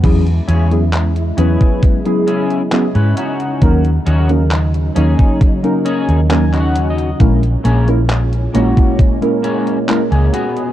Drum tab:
CC |x---------------|----------------|----------------|
HH |xxxxxxxxxxxxxxxx|xxxxxxxxxxxxxxxx|xxxxxxxxxxxxxxxx|
CP |----x-------x---|----x-------xx--|----x-------x---|
BD |o------oo-------|o------oo-------|o------oo-------|